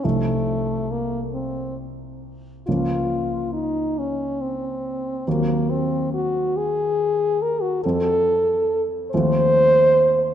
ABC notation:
X:1
M:6/8
L:1/16
Q:3/8=46
K:Fphr
V:1 name="French horn"
=A,4 B,2 C2 z4 | F4 E2 D2 C4 | B,2 C2 G2 A4 B G | =A4- A z c6 |]
V:2 name="Grand piano" clef=bass
[C,,F,=A,E]12 | [D,,F,B,D]12 | [E,,G,C]12 | [F,,F,C]6 [E,,F,=A,C]6 |]